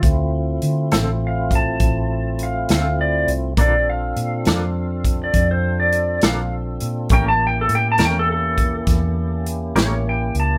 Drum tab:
HH |x-xx-xx-xx-x|x-xx-xx-xx-x|x-xx-xx-xx-x|
SD |---o-----o--|---o-----o--|---o--o--o--|
BD |o----oo-----|o----oo-----|o----oo-----|